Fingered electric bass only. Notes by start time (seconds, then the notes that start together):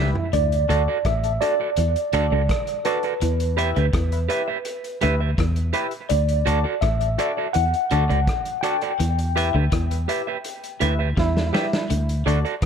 Already playing: C#2
0.33 D2
0.70 D2
1.05 A1
1.78 E2
2.13 D2
2.32 C#2
3.22 E2
3.77 D2
3.94 E2
5.03 D2
5.38 E2
6.11 D2
6.47 D2
6.83 A1
7.56 E2
7.92 D2
8.10 C#2
9.00 E2
9.55 D2
9.73 E2
10.82 D2
11.17 E2
11.91 D2
12.26 D2
12.62 A1